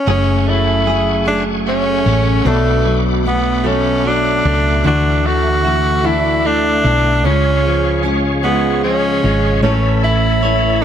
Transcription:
0.06 fingered electric bass F#1, steel-string acoustic guitar F#2 C#3 F#3 A3 C#4 G#4, tonewheel organ A3 F#5 G#5 C#6, tenor saxophone C#4
0.47 clean electric guitar A3, tenor saxophone E4
0.85 steel-string acoustic guitar F#3 A3 C#4 G#4
1.25 steel-string acoustic guitar F#2 F#3 A3 G#4, tenor saxophone D4
1.67 clean electric guitar A3, tenor saxophone C#4
2.04 fingered electric bass A1, steel-string acoustic guitar F#3 A3 C#4 G#4
2.45 fingered electric bass B1, steel-string acoustic guitar B2 F#3 A3 D4 F#4, tenor saxophone A3, tonewheel organ F#5 B5 D6
2.85 clean electric guitar F#3
3.24 steel-string acoustic guitar F#3 A3 D4 F#4, tenor saxophone B3
3.64 steel-string acoustic guitar B2 F#3 A3 F#4, tenor saxophone C#4
4.05 clean electric guitar F#3, tenor saxophone D4
4.44 fingered electric bass C#2, steel-string acoustic guitar A3 D4 F#4
4.84 fingered electric bass D2, steel-string acoustic guitar D3 E3 A3 E4 F#4, tenor saxophone D4, tonewheel organ E5
5.25 clean electric guitar A3, tenor saxophone F#4
5.64 steel-string acoustic guitar E3 A3 E4 F#4
6.03 steel-string acoustic guitar D3 E3 A3 E4 F#4, clean electric guitar D4, tenor saxophone E4
6.45 clean electric guitar A3, tenor saxophone D4
6.83 fingered electric bass B1, steel-string acoustic guitar A3 F#4, clean electric guitar D4
7.23 fingered electric bass C#2, steel-string acoustic guitar C#3 G#3 C#4 F4 G#4, tenor saxophone C#4, tonewheel organ G#4 C#5 F5 C#6
7.66 clean electric guitar F3
8.03 steel-string acoustic guitar G#3 C#4 F4 G#4
8.43 steel-string acoustic guitar C#3 G#3 C#4 F4 G#4, tenor saxophone B3
8.84 clean electric guitar F3, tenor saxophone C#4
9.23 fingered electric bass G#1, clean electric guitar G#3, steel-string acoustic guitar C#4 F4 G#4
9.62 fingered electric bass A1, steel-string acoustic guitar A3 C#4 E4 B4, tenor saxophone C#4, tonewheel organ A4 E5 B5, clean electric guitar C#5
10.03 clean electric guitar E4, tenor saxophone E4
10.42 steel-string acoustic guitar A3 C#4 E4 B4, clean electric guitar C#5

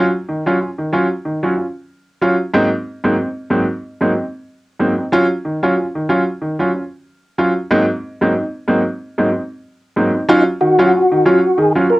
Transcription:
0.29 upright piano D#3
0.46 upright piano F#3 C#4 F4
0.61 upright piano C#4 F4
0.78 upright piano D#3
0.93 upright piano F#3 C#4 F4
1.25 upright piano D#3
1.43 upright piano F#3 C#4 F4
1.57 upright piano C#4 F4
2.22 upright piano F#3 C#4 F4
2.54 upright piano G#2 F#3 A#3 C4 D#4
3.04 upright piano G#2 F#3 A#3 C4 D#4
3.18 upright piano C4 D#4
3.50 upright piano G#2 F#3 A#3 C4 D#4
4.01 upright piano G#2 F#3 A#3 C4 D#4
4.15 upright piano C4 D#4
4.80 upright piano G#2 F#3 A#3 C4 D#4
4.98 upright piano C4 D#4
5.12 upright piano F#3 C#4 F4
5.45 upright piano D#3
5.63 upright piano F#3 C#4 F4
5.78 upright piano C#4 F4
5.95 upright piano D#3
6.09 upright piano F#3 C#4 F4
6.42 upright piano D#3
6.59 upright piano F#3 C#4 F4
6.74 upright piano C#4 F4
7.38 upright piano F#3 C#4 F4
7.70 upright piano G#2 F#3 A#3 C4 D#4
8.21 upright piano G#2 F#3 A#3 C4 D#4
8.35 upright piano C4 D#4
8.68 upright piano G#2 F#3 A#3 C4 D#4
9.18 upright piano G#2 F#3 A#3 C4 D#4
9.32 upright piano C4 D#4
9.96 upright piano G#2 F#3 A#3 C4 D#4
10.14 upright piano C4 D#4
10.29 upright piano F#3 C#4 F4, tonewheel organ D#4
10.61 upright piano D#3, tonewheel organ F#4
10.79 upright piano F#3 C#4 F4
10.94 upright piano C#4 F4
11.12 upright piano D#3
11.25 upright piano F#3 C#4 F4, tonewheel organ F#4
11.58 upright piano D#3, tonewheel organ G#4
11.75 upright piano F#3 C#4 F4
11.90 upright piano C#4 F4, tonewheel organ A#4

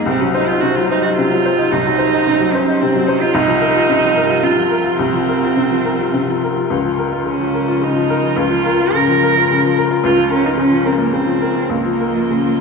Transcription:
0.06 upright piano C2, string section F#3 D#4 C5, cello C4
0.20 upright piano F#3, cello C#4
0.34 cello D#4, upright piano C5
0.48 upright piano D#4, cello F4
0.61 upright piano C3, cello F#4
0.75 upright piano F#3, cello F4
0.90 cello D#4, upright piano C5
1.03 upright piano D#4, cello F#4
1.17 upright piano C3, cello F4
1.31 upright piano F#3
1.45 upright piano C5
1.58 upright piano D#4
1.71 upright piano C2, cello D#4
1.86 upright piano F#3
1.98 upright piano C5
2.14 upright piano D#4
2.27 upright piano C3
2.40 upright piano F#3
2.52 cello C#4, upright piano C5
2.68 upright piano D#4
2.81 upright piano C3, cello C4
2.96 upright piano F#3
3.07 cello C#4, upright piano C5
3.21 upright piano D#4, cello F4
3.34 upright piano C2, string section F3 F4 A#4, cello D#4
3.47 upright piano F3
3.61 upright piano A#4
3.75 upright piano F4
3.89 upright piano C3
4.03 upright piano F3
4.16 upright piano A#4
4.30 upright piano F4
4.43 upright piano C3, cello F4
4.57 upright piano F3
4.71 upright piano A#4
4.84 upright piano F4
4.99 upright piano C2, cello C4
5.14 upright piano F3
5.28 upright piano A#4
5.43 upright piano F4
5.56 upright piano C3
5.71 upright piano F3
5.85 upright piano A#4
5.99 upright piano F4
6.13 upright piano C3
6.29 upright piano F3
6.43 upright piano A#4
6.56 upright piano F4
6.70 upright piano C#2, string section F3 F4 A#4
6.85 upright piano F3
6.98 upright piano A#4
7.12 upright piano F4
7.26 upright piano C#3, cello C#4
7.39 upright piano F3
7.54 upright piano A#4
7.68 upright piano F4
7.81 upright piano C#3, cello D#4
7.96 upright piano F3
8.10 upright piano A#4
8.23 upright piano F4
8.36 upright piano C#2, cello F4
8.50 upright piano F3
8.65 upright piano A#4
8.81 upright piano F4
8.95 upright piano C#3, cello A#4
9.09 upright piano F3
9.23 upright piano A#4
9.37 upright piano F4
9.51 upright piano C#3
9.65 upright piano F3
9.77 upright piano A#4
9.91 upright piano F4
10.04 upright piano C#2, cello F4
10.17 upright piano F3
10.30 cello C#4, upright piano A#4
10.44 cello D#4, upright piano F4
10.57 upright piano C#3, cello C#4
10.71 upright piano F3
10.85 cello C4, upright piano A#4
10.98 cello A#3, upright piano F4
11.13 upright piano C#3, cello C4
11.26 upright piano F3
11.41 upright piano A#4
11.55 upright piano F4
11.70 upright piano C#2, string section F3 F4 A#4, cello A#3
11.85 upright piano F3
12.00 upright piano A#4
12.15 upright piano F4
12.30 upright piano C#3
12.45 upright piano F3

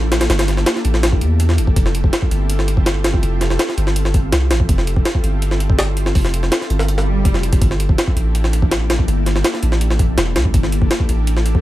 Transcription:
Already playing: 808-style bass A1
0.12 snare, closed hi-hat
0.21 snare, closed hi-hat
0.30 808-style bass G1, snare, closed hi-hat
0.39 snare, closed hi-hat
0.48 snare, closed hi-hat
0.57 snare
0.66 snare, closed hi-hat
0.76 snare
0.85 808-style bass A1, closed hi-hat
0.94 snare
1.03 snare, closed hi-hat
1.12 kick
1.21 808-style bass E2, closed hi-hat
1.40 closed hi-hat
1.49 snare
1.58 808-style bass G1, closed hi-hat
1.67 kick
1.76 808-style bass F1, kick, closed hi-hat
1.86 snare
1.95 closed hi-hat
2.04 kick
2.13 snare, closed hi-hat
2.22 kick
2.31 808-style bass G1, closed hi-hat
2.50 closed hi-hat
2.59 snare
2.68 closed hi-hat
2.77 kick
2.86 snare, closed hi-hat
3.04 snare, closed hi-hat
3.14 kick
3.23 808-style bass F1, closed hi-hat
3.41 snare, closed hi-hat
3.50 snare
3.59 snare, closed hi-hat
3.69 snare
3.78 808-style bass G1, closed hi-hat
3.87 snare
3.96 closed hi-hat
4.05 snare
4.14 kick, closed hi-hat
4.32 808-style bass C2, snare, closed hi-hat
4.51 808-style bass A1, snare, closed hi-hat
4.60 kick
4.69 808-style bass F1, kick, closed hi-hat
4.78 snare
4.87 closed hi-hat
4.96 kick
5.05 snare, closed hi-hat
5.15 kick
5.24 808-style bass G1, closed hi-hat
5.42 closed hi-hat
5.51 snare
5.60 closed hi-hat
5.70 kick
5.79 snare, closed hi-hat
5.97 closed hi-hat
6.06 snare
6.15 808-style bass F1, kick, open hi-hat
6.25 snare
6.34 closed hi-hat
6.43 snare
6.52 snare, closed hi-hat
6.61 snare
6.70 808-style bass G1, closed hi-hat
6.79 snare
6.88 closed hi-hat, swell
6.98 snare
7.25 808-style bass F1, kick, closed hi-hat
7.34 snare
7.43 closed hi-hat
7.53 kick, closed hi-hat
7.62 808-style bass G1, kick, closed hi-hat
7.71 snare
7.80 closed hi-hat
7.89 kick
7.98 snare, closed hi-hat
8.08 kick
8.16 808-style bass A1, closed hi-hat
8.35 closed hi-hat
8.44 snare
8.53 closed hi-hat
8.62 kick
8.71 snare, closed hi-hat
8.90 snare, closed hi-hat
8.99 kick
9.08 808-style bass G1, closed hi-hat
9.26 snare, closed hi-hat
9.36 snare
9.44 snare, closed hi-hat
9.54 snare
9.63 808-style bass A1, closed hi-hat
9.72 snare
9.81 closed hi-hat
9.90 snare
9.99 kick, closed hi-hat
10.18 808-style bass E1, snare, closed hi-hat
10.36 808-style bass C2, snare, closed hi-hat
10.45 kick
10.54 808-style bass G1, kick, closed hi-hat
10.63 snare
10.72 closed hi-hat
10.82 kick
10.91 snare, closed hi-hat
11.00 kick
11.09 808-style bass A1, closed hi-hat
11.27 closed hi-hat
11.37 snare
11.46 closed hi-hat
11.55 kick

